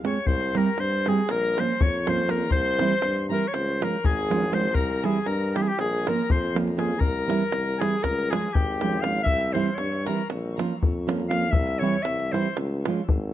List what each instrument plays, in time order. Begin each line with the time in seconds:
0.03 nylon-string guitar G#3 C4 F4 G#4, clarinet C#5, accordion C#6, davul high
0.27 tuba C2, clarinet C5, accordion C6, davul low
0.41 davul high
0.55 nylon-string guitar G3 C4 E4 G4, clarinet A#4, accordion A#5, davul high
0.66 davul high
0.78 tuba G2, clarinet C5, accordion C6, davul high
0.92 davul high
1.06 nylon-string guitar G3 C4 E4 G4, clarinet G#4, accordion G#5, davul high
1.18 davul high
1.29 tuba A#1, clarinet A#4, accordion A#5, davul high
1.57 nylon-string guitar F3 A#3 C#4, clarinet C5, accordion C6, davul high
1.61 nylon-string guitar F4
1.80 tuba F2, clarinet C#5, accordion C#6, davul low
2.06 nylon-string guitar F3 A#3 C#4 F4, clarinet C5, accordion C6, davul high
2.18 davul high
2.28 nylon-string guitar F3 A#3 C#4 F4, clarinet A#4, accordion A#5, davul high
2.49 tuba C2, clarinet C5, accordion C6, davul low
2.79 nylon-string guitar E3 G3 C4 E4, davul high
2.91 davul high
3.02 tuba G2, davul high
3.16 davul high
3.29 nylon-string guitar E3 G3 C4 E4, accordion A#5
3.33 clarinet A#4
3.42 davul high
3.47 clarinet C#5, accordion C#6
3.53 tuba C#2, clarinet C5, accordion C6, davul high
3.81 nylon-string guitar F3 G#3 C#4 F4, clarinet A#4, accordion A#5, davul high
4.04 tuba G#1, clarinet G#4, accordion G#5, davul low
4.30 nylon-string guitar F3 G#3 C#4 F4, davul high
4.52 nylon-string guitar F3 G#3 C#4 F4, clarinet C5, accordion C6, davul high
4.73 tuba C2, clarinet A#4, accordion A#5, davul low
4.90 davul high
5.03 nylon-string guitar E3 G3 C4 E4, clarinet G#4, accordion G#5, davul high
5.16 davul high
5.26 tuba G2, clarinet A#4, accordion A#5, davul high
5.41 davul high
5.54 nylon-string guitar E3 G3 C4 E4, clarinet G4, accordion G5, davul high
5.62 clarinet G#4, accordion G#5
5.68 clarinet G4, accordion G5, davul high
5.79 tuba A#1, clarinet G#4, accordion G#5, davul high
6.07 nylon-string guitar F3 A#3 C#4 F4, clarinet A#4, accordion A#5, davul high
6.30 tuba F2, clarinet C5, accordion C6, davul low
6.54 nylon-string guitar F3 A#3 C#4 F4, davul high
6.68 davul high
6.76 nylon-string guitar F3 A#3 C#4 F4, clarinet G#4, accordion G#5, davul high
6.98 tuba C2, clarinet A#4, accordion A#5, davul low
7.27 nylon-string guitar E3 G3 C4 E4, davul high
7.41 davul high
7.52 tuba C2, davul high
7.78 nylon-string guitar E3 G3, clarinet G#4, accordion G#5, davul high
7.82 nylon-string guitar C4 E4
8.02 tuba C#2, clarinet A#4, accordion A#5, davul high, davul low
8.19 davul high
8.30 nylon-string guitar F3 G#3 C#4 F4, clarinet G#4, accordion G#5, davul high
8.44 davul high
8.53 tuba G#1, clarinet G4, accordion G5, davul low
8.81 nylon-string guitar F3 G#3 C#4 F4, davul high
8.93 davul high
9.01 nylon-string guitar F3, clarinet F5, accordion F6, davul high
9.05 nylon-string guitar G#3 C#4 F4
9.15 davul high
9.23 clarinet E5, accordion E6, davul low
9.27 tuba C2
9.41 davul high
9.53 nylon-string guitar E3 G3 C4 E4, clarinet C5, accordion C6, davul high
9.66 davul high
9.75 clarinet C#5, accordion C#6, davul high
9.79 tuba G2
9.92 davul high
10.06 nylon-string guitar E3 G3 C4 E4, clarinet A#4, accordion A#5, davul high
10.19 davul high
10.30 tuba A#1, davul high
10.58 nylon-string guitar F3 A#3 C#4 F4, davul high
10.83 tuba F2, davul low
11.07 nylon-string guitar F3 A#3 C#4 F4, davul high
11.20 davul high
11.29 nylon-string guitar F3 A#3 C#4 F4, clarinet F5, accordion F6, davul high
11.51 tuba C2, clarinet E5, accordion E6, davul low
11.67 davul high
11.79 nylon-string guitar E3 G3 C4, clarinet C#5, accordion C#6
11.83 nylon-string guitar E4
11.94 davul high
12.03 tuba C2, clarinet E5, accordion E6, davul high
12.20 davul high
12.32 nylon-string guitar E3 G3 C4 E4, clarinet C5, accordion C6, davul high
12.45 davul high
12.57 tuba C#2, davul high
12.85 nylon-string guitar F3 G#3 C#4 F4, davul high
13.09 tuba G#1, davul low